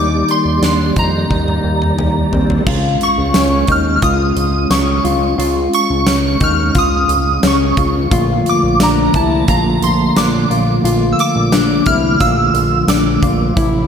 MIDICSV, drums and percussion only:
0, 0, Header, 1, 2, 480
1, 0, Start_track
1, 0, Tempo, 681818
1, 1874, Time_signature, 4, 2, 24, 8
1, 9765, End_track
2, 0, Start_track
2, 0, Title_t, "Drums"
2, 201, Note_on_c, 9, 42, 42
2, 271, Note_off_c, 9, 42, 0
2, 441, Note_on_c, 9, 38, 94
2, 442, Note_on_c, 9, 42, 55
2, 511, Note_off_c, 9, 38, 0
2, 512, Note_off_c, 9, 42, 0
2, 677, Note_on_c, 9, 42, 48
2, 680, Note_on_c, 9, 36, 73
2, 748, Note_off_c, 9, 42, 0
2, 750, Note_off_c, 9, 36, 0
2, 920, Note_on_c, 9, 36, 74
2, 925, Note_on_c, 9, 48, 46
2, 990, Note_off_c, 9, 36, 0
2, 995, Note_off_c, 9, 48, 0
2, 1043, Note_on_c, 9, 48, 46
2, 1114, Note_off_c, 9, 48, 0
2, 1280, Note_on_c, 9, 47, 56
2, 1350, Note_off_c, 9, 47, 0
2, 1398, Note_on_c, 9, 45, 77
2, 1468, Note_off_c, 9, 45, 0
2, 1639, Note_on_c, 9, 43, 81
2, 1709, Note_off_c, 9, 43, 0
2, 1759, Note_on_c, 9, 43, 77
2, 1830, Note_off_c, 9, 43, 0
2, 1877, Note_on_c, 9, 36, 107
2, 1879, Note_on_c, 9, 49, 97
2, 1948, Note_off_c, 9, 36, 0
2, 1949, Note_off_c, 9, 49, 0
2, 2118, Note_on_c, 9, 42, 49
2, 2189, Note_off_c, 9, 42, 0
2, 2353, Note_on_c, 9, 38, 106
2, 2354, Note_on_c, 9, 42, 56
2, 2354, Note_on_c, 9, 54, 61
2, 2423, Note_off_c, 9, 38, 0
2, 2424, Note_off_c, 9, 42, 0
2, 2424, Note_off_c, 9, 54, 0
2, 2587, Note_on_c, 9, 42, 57
2, 2593, Note_on_c, 9, 36, 90
2, 2657, Note_off_c, 9, 42, 0
2, 2664, Note_off_c, 9, 36, 0
2, 2831, Note_on_c, 9, 42, 63
2, 2833, Note_on_c, 9, 36, 88
2, 2901, Note_off_c, 9, 42, 0
2, 2904, Note_off_c, 9, 36, 0
2, 3073, Note_on_c, 9, 42, 49
2, 3144, Note_off_c, 9, 42, 0
2, 3313, Note_on_c, 9, 42, 61
2, 3314, Note_on_c, 9, 38, 123
2, 3316, Note_on_c, 9, 54, 67
2, 3384, Note_off_c, 9, 42, 0
2, 3385, Note_off_c, 9, 38, 0
2, 3386, Note_off_c, 9, 54, 0
2, 3554, Note_on_c, 9, 42, 49
2, 3625, Note_off_c, 9, 42, 0
2, 3799, Note_on_c, 9, 42, 72
2, 3869, Note_off_c, 9, 42, 0
2, 4037, Note_on_c, 9, 42, 50
2, 4107, Note_off_c, 9, 42, 0
2, 4270, Note_on_c, 9, 38, 113
2, 4271, Note_on_c, 9, 42, 59
2, 4271, Note_on_c, 9, 54, 63
2, 4341, Note_off_c, 9, 38, 0
2, 4341, Note_off_c, 9, 42, 0
2, 4342, Note_off_c, 9, 54, 0
2, 4509, Note_on_c, 9, 42, 54
2, 4512, Note_on_c, 9, 36, 90
2, 4579, Note_off_c, 9, 42, 0
2, 4583, Note_off_c, 9, 36, 0
2, 4750, Note_on_c, 9, 42, 64
2, 4753, Note_on_c, 9, 36, 85
2, 4820, Note_off_c, 9, 42, 0
2, 4824, Note_off_c, 9, 36, 0
2, 4993, Note_on_c, 9, 42, 54
2, 5063, Note_off_c, 9, 42, 0
2, 5231, Note_on_c, 9, 42, 71
2, 5232, Note_on_c, 9, 38, 109
2, 5234, Note_on_c, 9, 54, 66
2, 5301, Note_off_c, 9, 42, 0
2, 5302, Note_off_c, 9, 38, 0
2, 5304, Note_off_c, 9, 54, 0
2, 5471, Note_on_c, 9, 42, 46
2, 5472, Note_on_c, 9, 36, 88
2, 5541, Note_off_c, 9, 42, 0
2, 5542, Note_off_c, 9, 36, 0
2, 5713, Note_on_c, 9, 36, 106
2, 5714, Note_on_c, 9, 42, 72
2, 5783, Note_off_c, 9, 36, 0
2, 5784, Note_off_c, 9, 42, 0
2, 5957, Note_on_c, 9, 42, 52
2, 6027, Note_off_c, 9, 42, 0
2, 6195, Note_on_c, 9, 38, 117
2, 6196, Note_on_c, 9, 42, 63
2, 6197, Note_on_c, 9, 54, 65
2, 6266, Note_off_c, 9, 38, 0
2, 6267, Note_off_c, 9, 42, 0
2, 6267, Note_off_c, 9, 54, 0
2, 6433, Note_on_c, 9, 42, 53
2, 6435, Note_on_c, 9, 36, 88
2, 6503, Note_off_c, 9, 42, 0
2, 6506, Note_off_c, 9, 36, 0
2, 6673, Note_on_c, 9, 42, 69
2, 6676, Note_on_c, 9, 36, 83
2, 6744, Note_off_c, 9, 42, 0
2, 6746, Note_off_c, 9, 36, 0
2, 6916, Note_on_c, 9, 42, 54
2, 6987, Note_off_c, 9, 42, 0
2, 7156, Note_on_c, 9, 42, 68
2, 7157, Note_on_c, 9, 38, 114
2, 7158, Note_on_c, 9, 54, 70
2, 7226, Note_off_c, 9, 42, 0
2, 7227, Note_off_c, 9, 38, 0
2, 7229, Note_off_c, 9, 54, 0
2, 7399, Note_on_c, 9, 42, 48
2, 7470, Note_off_c, 9, 42, 0
2, 7640, Note_on_c, 9, 42, 71
2, 7711, Note_off_c, 9, 42, 0
2, 7879, Note_on_c, 9, 42, 55
2, 7949, Note_off_c, 9, 42, 0
2, 8113, Note_on_c, 9, 38, 119
2, 8114, Note_on_c, 9, 42, 60
2, 8114, Note_on_c, 9, 54, 63
2, 8183, Note_off_c, 9, 38, 0
2, 8184, Note_off_c, 9, 42, 0
2, 8185, Note_off_c, 9, 54, 0
2, 8348, Note_on_c, 9, 42, 56
2, 8353, Note_on_c, 9, 36, 89
2, 8418, Note_off_c, 9, 42, 0
2, 8423, Note_off_c, 9, 36, 0
2, 8591, Note_on_c, 9, 42, 62
2, 8593, Note_on_c, 9, 36, 83
2, 8661, Note_off_c, 9, 42, 0
2, 8663, Note_off_c, 9, 36, 0
2, 8833, Note_on_c, 9, 42, 52
2, 8903, Note_off_c, 9, 42, 0
2, 9070, Note_on_c, 9, 42, 67
2, 9071, Note_on_c, 9, 38, 107
2, 9072, Note_on_c, 9, 54, 66
2, 9140, Note_off_c, 9, 42, 0
2, 9141, Note_off_c, 9, 38, 0
2, 9143, Note_off_c, 9, 54, 0
2, 9311, Note_on_c, 9, 36, 92
2, 9312, Note_on_c, 9, 42, 45
2, 9381, Note_off_c, 9, 36, 0
2, 9382, Note_off_c, 9, 42, 0
2, 9552, Note_on_c, 9, 36, 102
2, 9553, Note_on_c, 9, 42, 76
2, 9623, Note_off_c, 9, 36, 0
2, 9623, Note_off_c, 9, 42, 0
2, 9765, End_track
0, 0, End_of_file